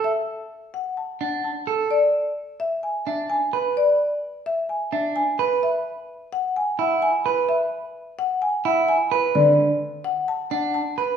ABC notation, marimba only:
X:1
M:4/4
L:1/8
Q:1/4=129
K:Emix
V:1 name="Marimba"
e z2 f a f a z | d z2 e g e g z | d z2 e g e g z | e z2 f g f g z |
e z2 f g f g z | d z2 f a f a z |]